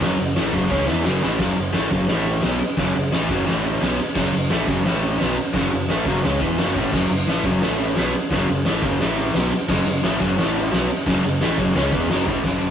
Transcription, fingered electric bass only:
0.01 0.17 F#1 loud
0.19 0.35 F#1 medium
0.37 0.52 A1 loud
0.53 0.69 F#1 loud
0.70 0.86 C#2 loud
0.89 1.04 E2 medium
1.06 1.21 F#1 medium
1.24 1.39 A1 loud
1.40 1.56 F#1 medium
1.57 1.73 F#1 medium
1.75 1.90 A1 loud
1.91 2.07 F#1 medium
2.09 2.41 A1 medium
2.43 2.60 B1 medium
2.62 muted fingered electric bass stroke soft
2.77 2.94 F#1 medium
2.96 3.12 F#1 medium
3.12 3.28 A1 medium
3.29 3.46 F#1 medium
3.48 3.80 A1 medium
3.81 3.98 B1 medium
4.00 muted fingered electric bass stroke soft
4.16 4.32 F#1 medium
4.35 4.51 F#1 medium
4.52 4.67 A1 loud
4.68 4.84 F#1 loud
4.87 5.19 A1 medium
5.21 5.37 B1 medium
5.39 muted fingered electric bass stroke soft
5.54 5.71 F#1 loud
5.74 5.90 F#1 medium
5.90 6.05 A1 loud
6.05 6.22 F#1 loud
6.24 6.40 C#2 loud
6.40 6.57 E2 medium
6.58 6.74 F#1 medium
6.75 6.92 A1 loud
6.93 7.09 F#1 medium
7.09 7.26 F#1 medium
7.27 7.44 A1 medium
7.44 7.61 F#1 medium
7.63 7.95 A1 loud
7.98 8.13 B1 medium
8.15 muted fingered electric bass stroke soft
8.31 8.47 F#1 medium
8.50 8.65 F#1 medium
8.66 8.82 A1 loud
8.83 8.99 F#1 loud
9.00 9.32 A1 loud
9.34 9.50 B1 medium
9.52 muted fingered electric bass stroke soft
9.69 9.83 F#1 medium
9.84 10.01 F#1 medium
10.03 10.19 A1 loud
10.20 10.36 F#1 loud
10.36 10.69 A1 loud
10.72 10.88 B1 medium
11.07 11.23 F#1 loud
11.24 11.40 F#1 medium
11.42 11.58 A1 loud
11.58 11.74 F#1 loud
11.75 11.92 C#2 loud
11.92 12.08 E2 loud
12.09 12.26 F#1 medium
12.27 12.43 A1 loud
12.44 12.71 F#1 medium

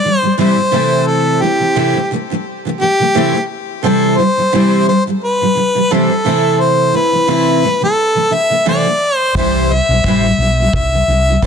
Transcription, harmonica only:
0.00 0.18 D5 medium
0.18 0.34 C5 medium
0.40 1.08 C5 medium
1.07 1.43 A4 medium
1.41 2.10 G4 medium
2.81 3.45 G4 medium
3.84 4.19 A4 medium
4.17 4.86 C5 medium
4.88 5.04 C5 medium
5.24 5.95 B4 medium
5.93 6.62 A4 medium
6.60 6.97 C5 medium
6.96 7.83 B4 medium
7.84 8.35 A4 medium
8.34 8.67 E5 medium
8.69 9.17 D5 medium
9.17 9.32 C5 medium
9.37 9.75 C5 medium
9.74 10.74 E5 loud
10.75 11.39 E5 medium

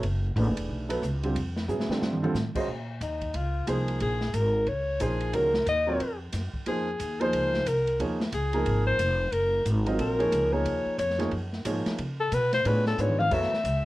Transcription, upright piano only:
0.36 0.86 E3 medium
0.36 0.86 A3 medium
0.36 0.86 D4 medium
0.36 0.86 G#4 medium
0.36 0.86 B4 medium
0.89 1.00 F#3 medium
0.89 1.01 B3 medium
0.89 1.01 E4 medium
0.89 1.01 A4 medium
0.89 1.01 B4 medium
1.23 1.34 D3 medium
1.23 1.34 G3 medium
1.23 1.35 C4 medium
1.23 1.35 F4 medium
1.23 1.35 G4 medium
1.68 1.87 C#3 medium
1.68 1.87 F#3 medium
1.68 1.87 B3 soft
1.68 1.87 E4 soft
1.68 1.87 G#4 medium
1.89 2.18 D3 medium
1.89 2.18 G3 medium
1.89 2.18 C4 soft
1.89 2.19 F4 medium
1.89 2.19 A4 medium
2.22 2.33 D3 medium
2.22 2.34 G3 medium
2.22 2.34 C4 medium
2.22 2.34 F4 medium
2.22 2.34 A4 medium
2.55 2.66 G#3 medium
2.55 2.67 C#4 medium
2.55 2.67 F#4 medium
2.55 2.67 C5 medium
2.55 2.67 D#5 medium
3.67 4.17 F3 medium
3.67 4.17 A#3 medium
3.67 4.17 D#4 medium
3.67 4.17 G#4 medium
3.67 4.18 C5 medium
5.00 5.50 F3 medium
5.00 5.50 A#3 medium
5.00 5.50 D#4 medium
5.00 5.51 G#4 soft
5.00 5.51 C5 medium
5.33 5.52 D#3 medium
5.33 5.52 G#3 medium
5.33 5.52 C#4 medium
5.33 5.53 F#4 medium
5.33 5.53 A#4 medium
5.87 5.98 F#3 medium
5.87 5.99 C4 medium
5.87 5.99 F4 medium
5.87 5.99 A#4 medium
5.87 5.99 C#5 medium
6.66 6.85 F3 medium
6.66 6.85 A#3 medium
6.66 6.85 D#4 medium
6.66 6.86 G#4 medium
6.66 6.86 C5 medium
7.20 7.64 F3 medium
7.20 7.64 A#3 medium
7.20 7.64 D#4 medium
7.20 7.64 G#4 medium
7.20 7.64 C5 medium
7.99 8.18 F3 medium
7.99 8.18 A#3 medium
7.99 8.18 D#4 medium
7.99 8.19 G#4 medium
7.99 8.19 C#5 medium
8.53 8.97 F3 medium
8.53 8.97 A#3 medium
8.53 8.97 D#4 medium
8.53 8.97 G#4 medium
8.53 8.97 A#4 medium
9.86 10.17 F#3 medium
9.86 10.17 C4 medium
9.86 10.18 F4 medium
9.86 10.18 A#4 medium
9.86 10.18 D#5 medium
10.19 10.50 F3 medium
10.19 10.51 A#3 medium
10.19 10.51 D#4 medium
10.19 10.51 G#4 medium
10.19 10.51 C#5 medium
10.52 10.96 F3 medium
10.52 10.96 A#3 medium
10.52 10.96 D#4 medium
10.52 10.96 G#4 medium
10.52 10.96 A#4 medium
11.18 11.30 F3 medium
11.18 11.30 A#3 medium
11.18 11.30 D#4 medium
11.18 11.31 G#4 medium
11.18 11.31 C#5 medium
11.65 11.98 F3 medium
11.65 11.98 A#3 medium
11.65 11.98 D#4 medium
11.65 11.99 G#4 medium
11.65 11.99 C#5 medium
12.65 12.97 B3 medium
12.65 12.97 D4 soft
12.65 12.97 F4 medium
12.65 12.97 G#4 medium
12.65 12.97 C#5 medium
12.98 13.17 B3 medium
12.98 13.17 D4 medium
12.98 13.17 F4 medium
12.98 13.17 G#4 soft
12.98 13.17 B4 medium
13.31 13.50 F#3 medium
13.31 13.50 B3 medium
13.31 13.50 E4 medium
13.31 13.50 A4 medium
13.31 13.50 C#5 medium

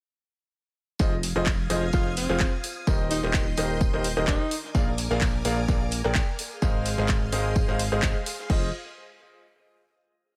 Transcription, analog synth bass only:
1.00 1.33 F1 medium
1.36 1.68 F1 loud
1.70 1.91 F1 loud
2.29 2.46 F1 loud
2.87 3.21 D#1 loud
3.23 3.55 D#1 loud
3.58 3.91 D#1 loud
3.94 4.14 D#1 loud
4.17 4.26 D#1 loud
4.28 4.38 D#1 loud
4.75 5.08 A#1 medium
5.11 5.43 A#1 loud
5.45 5.66 A#1 loud
6.04 6.21 A#1 loud
6.62 6.96 G#1 loud
6.98 7.30 G#1 loud
7.33 7.66 G#1 loud
7.69 7.90 G#1 loud
7.92 8.01 G#1 loud
8.50 8.72 F1 loud

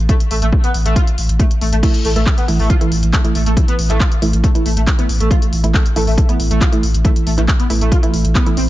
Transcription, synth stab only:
1.83 2.13 E3 medium
1.83 2.13 A3 medium
1.83 2.13 E4 medium
2.16 2.23 E3 medium
2.16 2.23 A3 medium
2.16 2.23 E4 medium
2.48 2.78 E3 medium
2.48 2.78 A3 medium
2.48 2.78 E4 medium
2.81 3.22 E3 medium
2.81 3.22 A3 medium
2.81 3.22 E4 loud
3.24 3.35 E3 medium
3.24 3.35 A3 medium
3.24 3.35 E4 medium
3.57 3.87 E3 medium
3.57 3.87 A3 medium
3.57 3.87 E4 medium
3.90 3.97 E3 medium
3.90 3.97 A3 medium
3.90 3.97 E4 medium
4.22 4.52 E3 medium
4.22 4.52 A3 medium
4.22 4.52 E4 medium
4.55 4.96 E3 medium
4.55 4.96 A3 medium
4.55 4.96 E4 loud
4.98 5.09 E3 medium
4.98 5.09 A3 medium
4.98 5.09 E4 medium
5.31 5.61 E3 medium
5.31 5.61 A3 medium
5.31 5.61 E4 medium
5.64 5.70 E3 medium
5.64 5.70 A3 medium
5.64 5.70 E4 medium
5.96 6.26 E3 medium
5.96 6.26 A3 medium
5.96 6.26 E4 medium
6.29 6.70 E3 medium
6.29 6.70 A3 medium
6.29 6.70 E4 medium
6.72 6.83 E3 medium
6.72 6.83 A3 medium
6.72 6.83 E4 medium
7.05 7.35 E3 medium
7.05 7.35 A3 medium
7.05 7.35 E4 medium
7.38 7.44 E3 medium
7.38 7.44 A3 medium
7.38 7.44 E4 medium
7.70 8.00 E3 medium
7.70 8.00 A3 medium
7.70 8.00 E4 medium
8.03 8.44 E3 medium
8.03 8.44 A3 medium
8.03 8.44 E4 loud
8.46 8.57 E3 medium
8.46 8.57 A3 medium
8.46 8.57 E4 medium

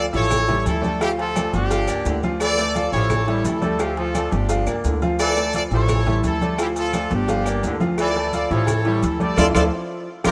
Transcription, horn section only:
0.15 0.63 A4 medium
0.15 0.64 C#5 loud
0.67 1.00 E4 medium
0.67 1.02 A4 medium
1.02 1.09 E4 medium
1.02 1.10 G4 loud
1.20 1.51 F4 medium
1.20 1.52 A4 loud
1.54 2.20 D4 medium
1.54 2.20 G4 loud
2.42 2.74 A4 medium
2.42 2.73 D5 loud
2.76 2.92 A4 medium
2.76 2.92 D5 loud
2.93 3.42 A4 medium
2.93 3.42 C#5 loud
3.45 3.80 E4 medium
3.45 3.80 A4 medium
3.80 3.98 E4 medium
3.80 3.97 G4 loud
3.97 4.33 F4 medium
3.97 4.32 A4 medium
4.32 4.76 D4 medium
4.32 4.75 G4 medium
5.21 5.53 A4 loud
5.21 5.52 D5 loud
5.55 5.63 A4 medium
5.55 5.63 D5 loud
5.74 6.21 A4 medium
5.74 6.22 C#5 loud
6.27 6.58 E4 medium
6.27 6.58 A4 medium
6.61 6.68 E4 medium
6.61 6.68 G4 loud
6.78 7.10 F4 medium
6.78 7.10 A4 loud
7.13 7.78 D4 medium
7.13 7.78 G4 loud
8.00 8.32 A4 medium
8.00 8.32 D5 loud
8.34 8.50 A4 medium
8.34 8.50 D5 loud
8.52 9.03 A4 medium
8.52 9.04 C#5 loud
9.04 9.21 E4 medium
9.04 9.20 A4 medium
9.21 9.37 A4 medium
9.21 9.37 D5 loud
9.38 9.47 F4 loud
9.38 9.46 A4 loud
9.38 9.47 D5 loud
9.54 9.63 F4 medium
9.54 9.63 A4 medium
9.54 9.63 D5 medium
10.26 10.31 F4 loud
10.26 10.31 G4 loud
10.26 10.31 A#4 loud

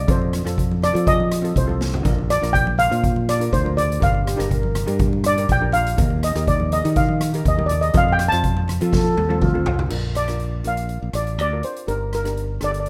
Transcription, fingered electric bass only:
0.08 0.43 F2 loud
0.45 0.91 F2 medium
0.95 1.52 F3 loud
1.56 2.01 C2 loud
2.05 2.39 A#1 medium
2.42 2.87 A#1 medium
2.92 3.48 A#2 medium
3.52 3.98 D2 loud
4.02 4.36 G1 loud
4.40 4.84 G1 medium
4.88 5.45 G2 loud
5.49 5.94 A#1 loud
5.98 6.33 D#2 loud
6.35 6.81 D#2 loud
6.85 7.42 D#3 medium
7.46 7.91 D#2 loud
7.94 8.29 F2 loud
8.33 8.77 F2 medium
8.82 9.15 F3 loud
9.18 9.40 D#2 medium
9.42 9.64 D2 medium
9.67 9.89 C2 medium
9.92 10.61 A#1 medium
10.65 11.00 A#1 medium
11.02 11.13 A#1 medium
11.13 11.38 A1 medium
11.38 11.61 D2 medium
11.88 12.58 G1 medium
12.62 12.89 G1 medium

